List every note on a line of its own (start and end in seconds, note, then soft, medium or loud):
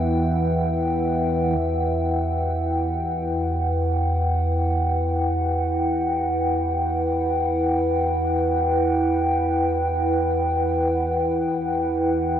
0.00 1.59 E2 medium
0.00 1.60 E3 medium
0.00 12.40 E4 medium
0.00 12.40 B4 medium
0.00 1.60 E5 medium
0.00 12.40 F#5 medium
0.00 12.40 G5 medium
1.60 12.40 E2 medium
1.60 12.40 E3 medium